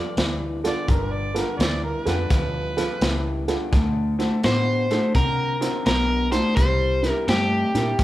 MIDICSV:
0, 0, Header, 1, 7, 480
1, 0, Start_track
1, 0, Tempo, 710059
1, 597, Time_signature, 4, 2, 24, 8
1, 5434, End_track
2, 0, Start_track
2, 0, Title_t, "Overdriven electric guitar"
2, 0, Program_c, 0, 29
2, 0, Note_on_c, 0, 74, 69
2, 847, Note_off_c, 0, 74, 0
2, 847, Note_on_c, 0, 72, 69
2, 1536, Note_off_c, 0, 72, 0
2, 3011, Note_on_c, 0, 72, 100
2, 3481, Note_off_c, 0, 72, 0
2, 3483, Note_on_c, 0, 70, 88
2, 3959, Note_off_c, 0, 70, 0
2, 3967, Note_on_c, 0, 70, 96
2, 4271, Note_off_c, 0, 70, 0
2, 4273, Note_on_c, 0, 72, 92
2, 4429, Note_off_c, 0, 72, 0
2, 4437, Note_on_c, 0, 72, 84
2, 4802, Note_off_c, 0, 72, 0
2, 4802, Note_on_c, 0, 70, 84
2, 4929, Note_on_c, 0, 67, 80
2, 4933, Note_off_c, 0, 70, 0
2, 5434, Note_off_c, 0, 67, 0
2, 5434, End_track
3, 0, Start_track
3, 0, Title_t, "Harmonica"
3, 0, Program_c, 1, 22
3, 452, Note_on_c, 1, 74, 79
3, 600, Note_off_c, 1, 74, 0
3, 608, Note_on_c, 1, 70, 77
3, 765, Note_on_c, 1, 74, 69
3, 776, Note_off_c, 1, 70, 0
3, 916, Note_off_c, 1, 74, 0
3, 928, Note_on_c, 1, 70, 73
3, 1082, Note_on_c, 1, 74, 81
3, 1092, Note_off_c, 1, 70, 0
3, 1234, Note_off_c, 1, 74, 0
3, 1248, Note_on_c, 1, 70, 73
3, 1398, Note_off_c, 1, 70, 0
3, 1411, Note_on_c, 1, 67, 63
3, 1411, Note_on_c, 1, 71, 90
3, 1458, Note_off_c, 1, 67, 0
3, 2337, Note_off_c, 1, 71, 0
3, 5434, End_track
4, 0, Start_track
4, 0, Title_t, "Honky-tonk piano"
4, 0, Program_c, 2, 3
4, 432, Note_on_c, 2, 69, 70
4, 434, Note_on_c, 2, 74, 76
4, 435, Note_on_c, 2, 65, 85
4, 515, Note_off_c, 2, 69, 0
4, 516, Note_off_c, 2, 65, 0
4, 516, Note_off_c, 2, 74, 0
4, 908, Note_on_c, 2, 71, 70
4, 909, Note_on_c, 2, 65, 70
4, 911, Note_on_c, 2, 69, 66
4, 992, Note_off_c, 2, 71, 0
4, 993, Note_off_c, 2, 65, 0
4, 994, Note_off_c, 2, 69, 0
4, 1389, Note_on_c, 2, 71, 78
4, 1390, Note_on_c, 2, 69, 62
4, 1393, Note_on_c, 2, 65, 72
4, 1473, Note_off_c, 2, 69, 0
4, 1473, Note_off_c, 2, 71, 0
4, 1475, Note_off_c, 2, 65, 0
4, 1873, Note_on_c, 2, 65, 76
4, 1873, Note_on_c, 2, 69, 67
4, 1873, Note_on_c, 2, 71, 86
4, 1955, Note_off_c, 2, 65, 0
4, 1955, Note_off_c, 2, 69, 0
4, 1955, Note_off_c, 2, 71, 0
4, 2352, Note_on_c, 2, 65, 77
4, 2352, Note_on_c, 2, 69, 71
4, 2354, Note_on_c, 2, 71, 81
4, 2434, Note_off_c, 2, 65, 0
4, 2434, Note_off_c, 2, 69, 0
4, 2435, Note_off_c, 2, 71, 0
4, 2831, Note_on_c, 2, 72, 83
4, 2832, Note_on_c, 2, 64, 68
4, 2833, Note_on_c, 2, 66, 62
4, 2914, Note_off_c, 2, 64, 0
4, 2914, Note_off_c, 2, 72, 0
4, 2915, Note_off_c, 2, 66, 0
4, 3320, Note_on_c, 2, 69, 70
4, 3322, Note_on_c, 2, 64, 59
4, 3322, Note_on_c, 2, 66, 49
4, 3399, Note_off_c, 2, 66, 0
4, 3399, Note_off_c, 2, 69, 0
4, 3400, Note_off_c, 2, 64, 0
4, 3792, Note_on_c, 2, 72, 75
4, 3794, Note_on_c, 2, 64, 61
4, 3795, Note_on_c, 2, 66, 58
4, 3875, Note_off_c, 2, 64, 0
4, 3875, Note_off_c, 2, 72, 0
4, 3876, Note_off_c, 2, 66, 0
4, 4271, Note_on_c, 2, 66, 64
4, 4271, Note_on_c, 2, 72, 73
4, 4272, Note_on_c, 2, 64, 70
4, 4354, Note_off_c, 2, 66, 0
4, 4354, Note_off_c, 2, 72, 0
4, 4355, Note_off_c, 2, 64, 0
4, 4747, Note_on_c, 2, 62, 55
4, 4750, Note_on_c, 2, 64, 56
4, 4751, Note_on_c, 2, 70, 65
4, 4833, Note_off_c, 2, 62, 0
4, 4834, Note_off_c, 2, 64, 0
4, 4835, Note_off_c, 2, 70, 0
4, 5235, Note_on_c, 2, 62, 63
4, 5235, Note_on_c, 2, 64, 62
4, 5235, Note_on_c, 2, 70, 72
4, 5317, Note_off_c, 2, 62, 0
4, 5317, Note_off_c, 2, 64, 0
4, 5317, Note_off_c, 2, 70, 0
4, 5434, End_track
5, 0, Start_track
5, 0, Title_t, "Clean electric guitar"
5, 0, Program_c, 3, 27
5, 0, Note_on_c, 3, 43, 67
5, 0, Note_on_c, 3, 53, 87
5, 100, Note_off_c, 3, 43, 0
5, 103, Note_off_c, 3, 53, 0
5, 116, Note_on_c, 3, 43, 65
5, 121, Note_on_c, 3, 52, 85
5, 401, Note_off_c, 3, 43, 0
5, 403, Note_off_c, 3, 52, 0
5, 433, Note_on_c, 3, 43, 58
5, 435, Note_on_c, 3, 50, 61
5, 581, Note_off_c, 3, 43, 0
5, 582, Note_off_c, 3, 50, 0
5, 592, Note_on_c, 3, 43, 74
5, 596, Note_on_c, 3, 50, 77
5, 878, Note_off_c, 3, 43, 0
5, 880, Note_off_c, 3, 50, 0
5, 909, Note_on_c, 3, 43, 69
5, 912, Note_on_c, 3, 50, 73
5, 1059, Note_off_c, 3, 43, 0
5, 1060, Note_off_c, 3, 50, 0
5, 1075, Note_on_c, 3, 43, 80
5, 1079, Note_on_c, 3, 52, 83
5, 1360, Note_off_c, 3, 43, 0
5, 1362, Note_off_c, 3, 52, 0
5, 1392, Note_on_c, 3, 43, 61
5, 1393, Note_on_c, 3, 50, 70
5, 1540, Note_off_c, 3, 43, 0
5, 1541, Note_off_c, 3, 50, 0
5, 1560, Note_on_c, 3, 43, 74
5, 1563, Note_on_c, 3, 53, 86
5, 1842, Note_off_c, 3, 43, 0
5, 1844, Note_off_c, 3, 53, 0
5, 1871, Note_on_c, 3, 43, 63
5, 1874, Note_on_c, 3, 53, 70
5, 2020, Note_off_c, 3, 43, 0
5, 2021, Note_off_c, 3, 53, 0
5, 2039, Note_on_c, 3, 43, 69
5, 2042, Note_on_c, 3, 52, 77
5, 2322, Note_off_c, 3, 43, 0
5, 2323, Note_off_c, 3, 52, 0
5, 2355, Note_on_c, 3, 43, 61
5, 2357, Note_on_c, 3, 50, 71
5, 2501, Note_off_c, 3, 43, 0
5, 2502, Note_off_c, 3, 50, 0
5, 2513, Note_on_c, 3, 50, 78
5, 2517, Note_on_c, 3, 57, 80
5, 2799, Note_off_c, 3, 50, 0
5, 2801, Note_off_c, 3, 57, 0
5, 2830, Note_on_c, 3, 50, 63
5, 2833, Note_on_c, 3, 57, 75
5, 2979, Note_off_c, 3, 50, 0
5, 2981, Note_off_c, 3, 57, 0
5, 2999, Note_on_c, 3, 50, 78
5, 2999, Note_on_c, 3, 59, 83
5, 3282, Note_off_c, 3, 50, 0
5, 3282, Note_off_c, 3, 59, 0
5, 3314, Note_on_c, 3, 50, 63
5, 3318, Note_on_c, 3, 57, 73
5, 3462, Note_off_c, 3, 50, 0
5, 3463, Note_off_c, 3, 57, 0
5, 3478, Note_on_c, 3, 50, 73
5, 3482, Note_on_c, 3, 60, 75
5, 3761, Note_off_c, 3, 50, 0
5, 3764, Note_off_c, 3, 60, 0
5, 3790, Note_on_c, 3, 50, 71
5, 3792, Note_on_c, 3, 60, 67
5, 3939, Note_off_c, 3, 50, 0
5, 3941, Note_off_c, 3, 60, 0
5, 3955, Note_on_c, 3, 50, 72
5, 3955, Note_on_c, 3, 59, 91
5, 4240, Note_off_c, 3, 50, 0
5, 4241, Note_off_c, 3, 59, 0
5, 4269, Note_on_c, 3, 50, 61
5, 4274, Note_on_c, 3, 57, 76
5, 4419, Note_off_c, 3, 50, 0
5, 4422, Note_off_c, 3, 57, 0
5, 4434, Note_on_c, 3, 48, 75
5, 4438, Note_on_c, 3, 55, 80
5, 4720, Note_off_c, 3, 48, 0
5, 4722, Note_off_c, 3, 55, 0
5, 4755, Note_on_c, 3, 48, 73
5, 4758, Note_on_c, 3, 55, 69
5, 4903, Note_off_c, 3, 48, 0
5, 4904, Note_off_c, 3, 55, 0
5, 4915, Note_on_c, 3, 48, 77
5, 4917, Note_on_c, 3, 57, 85
5, 5201, Note_off_c, 3, 48, 0
5, 5202, Note_off_c, 3, 57, 0
5, 5235, Note_on_c, 3, 48, 69
5, 5240, Note_on_c, 3, 55, 69
5, 5383, Note_off_c, 3, 48, 0
5, 5386, Note_off_c, 3, 55, 0
5, 5398, Note_on_c, 3, 48, 72
5, 5401, Note_on_c, 3, 58, 78
5, 5434, Note_off_c, 3, 48, 0
5, 5434, Note_off_c, 3, 58, 0
5, 5434, End_track
6, 0, Start_track
6, 0, Title_t, "Fingered electric bass"
6, 0, Program_c, 4, 33
6, 115, Note_on_c, 4, 38, 70
6, 473, Note_off_c, 4, 38, 0
6, 596, Note_on_c, 4, 31, 74
6, 954, Note_off_c, 4, 31, 0
6, 1075, Note_on_c, 4, 38, 79
6, 1310, Note_off_c, 4, 38, 0
6, 1395, Note_on_c, 4, 41, 81
6, 1516, Note_off_c, 4, 41, 0
6, 1558, Note_on_c, 4, 38, 77
6, 1915, Note_off_c, 4, 38, 0
6, 2038, Note_on_c, 4, 37, 71
6, 2395, Note_off_c, 4, 37, 0
6, 2520, Note_on_c, 4, 38, 76
6, 2876, Note_off_c, 4, 38, 0
6, 3001, Note_on_c, 4, 45, 71
6, 3357, Note_off_c, 4, 45, 0
6, 3481, Note_on_c, 4, 48, 77
6, 3837, Note_off_c, 4, 48, 0
6, 3962, Note_on_c, 4, 35, 71
6, 4318, Note_off_c, 4, 35, 0
6, 4440, Note_on_c, 4, 36, 76
6, 4797, Note_off_c, 4, 36, 0
6, 4919, Note_on_c, 4, 43, 82
6, 5154, Note_off_c, 4, 43, 0
6, 5236, Note_on_c, 4, 46, 90
6, 5358, Note_off_c, 4, 46, 0
6, 5401, Note_on_c, 4, 43, 83
6, 5434, Note_off_c, 4, 43, 0
6, 5434, End_track
7, 0, Start_track
7, 0, Title_t, "Drums"
7, 117, Note_on_c, 9, 42, 71
7, 122, Note_on_c, 9, 38, 96
7, 184, Note_off_c, 9, 42, 0
7, 190, Note_off_c, 9, 38, 0
7, 438, Note_on_c, 9, 42, 54
7, 443, Note_on_c, 9, 38, 30
7, 505, Note_off_c, 9, 42, 0
7, 511, Note_off_c, 9, 38, 0
7, 597, Note_on_c, 9, 42, 72
7, 598, Note_on_c, 9, 36, 100
7, 665, Note_off_c, 9, 42, 0
7, 666, Note_off_c, 9, 36, 0
7, 919, Note_on_c, 9, 42, 62
7, 924, Note_on_c, 9, 38, 34
7, 986, Note_off_c, 9, 42, 0
7, 992, Note_off_c, 9, 38, 0
7, 1082, Note_on_c, 9, 42, 74
7, 1087, Note_on_c, 9, 38, 98
7, 1150, Note_off_c, 9, 42, 0
7, 1155, Note_off_c, 9, 38, 0
7, 1397, Note_on_c, 9, 42, 58
7, 1403, Note_on_c, 9, 38, 30
7, 1465, Note_off_c, 9, 42, 0
7, 1470, Note_off_c, 9, 38, 0
7, 1557, Note_on_c, 9, 42, 82
7, 1558, Note_on_c, 9, 36, 108
7, 1563, Note_on_c, 9, 38, 30
7, 1625, Note_off_c, 9, 42, 0
7, 1626, Note_off_c, 9, 36, 0
7, 1630, Note_off_c, 9, 38, 0
7, 1878, Note_on_c, 9, 42, 54
7, 1883, Note_on_c, 9, 38, 30
7, 1946, Note_off_c, 9, 42, 0
7, 1951, Note_off_c, 9, 38, 0
7, 2037, Note_on_c, 9, 42, 72
7, 2043, Note_on_c, 9, 38, 100
7, 2105, Note_off_c, 9, 42, 0
7, 2110, Note_off_c, 9, 38, 0
7, 2355, Note_on_c, 9, 42, 56
7, 2360, Note_on_c, 9, 38, 29
7, 2422, Note_off_c, 9, 42, 0
7, 2428, Note_off_c, 9, 38, 0
7, 2519, Note_on_c, 9, 36, 110
7, 2520, Note_on_c, 9, 42, 77
7, 2525, Note_on_c, 9, 38, 30
7, 2587, Note_off_c, 9, 36, 0
7, 2587, Note_off_c, 9, 42, 0
7, 2593, Note_off_c, 9, 38, 0
7, 2838, Note_on_c, 9, 42, 50
7, 2843, Note_on_c, 9, 38, 30
7, 2905, Note_off_c, 9, 42, 0
7, 2911, Note_off_c, 9, 38, 0
7, 2998, Note_on_c, 9, 42, 71
7, 3003, Note_on_c, 9, 38, 83
7, 3065, Note_off_c, 9, 42, 0
7, 3071, Note_off_c, 9, 38, 0
7, 3317, Note_on_c, 9, 42, 50
7, 3322, Note_on_c, 9, 38, 30
7, 3385, Note_off_c, 9, 42, 0
7, 3390, Note_off_c, 9, 38, 0
7, 3480, Note_on_c, 9, 36, 100
7, 3483, Note_on_c, 9, 42, 71
7, 3548, Note_off_c, 9, 36, 0
7, 3551, Note_off_c, 9, 42, 0
7, 3800, Note_on_c, 9, 42, 57
7, 3805, Note_on_c, 9, 38, 30
7, 3868, Note_off_c, 9, 42, 0
7, 3873, Note_off_c, 9, 38, 0
7, 3961, Note_on_c, 9, 42, 67
7, 3966, Note_on_c, 9, 38, 90
7, 4028, Note_off_c, 9, 42, 0
7, 4034, Note_off_c, 9, 38, 0
7, 4275, Note_on_c, 9, 42, 51
7, 4280, Note_on_c, 9, 38, 32
7, 4343, Note_off_c, 9, 42, 0
7, 4348, Note_off_c, 9, 38, 0
7, 4439, Note_on_c, 9, 42, 81
7, 4441, Note_on_c, 9, 36, 93
7, 4507, Note_off_c, 9, 42, 0
7, 4508, Note_off_c, 9, 36, 0
7, 4757, Note_on_c, 9, 42, 53
7, 4763, Note_on_c, 9, 38, 34
7, 4825, Note_off_c, 9, 42, 0
7, 4830, Note_off_c, 9, 38, 0
7, 4922, Note_on_c, 9, 42, 73
7, 4927, Note_on_c, 9, 38, 102
7, 4989, Note_off_c, 9, 42, 0
7, 4995, Note_off_c, 9, 38, 0
7, 5240, Note_on_c, 9, 42, 62
7, 5245, Note_on_c, 9, 38, 33
7, 5307, Note_off_c, 9, 42, 0
7, 5313, Note_off_c, 9, 38, 0
7, 5400, Note_on_c, 9, 42, 77
7, 5401, Note_on_c, 9, 36, 105
7, 5406, Note_on_c, 9, 38, 31
7, 5434, Note_off_c, 9, 36, 0
7, 5434, Note_off_c, 9, 38, 0
7, 5434, Note_off_c, 9, 42, 0
7, 5434, End_track
0, 0, End_of_file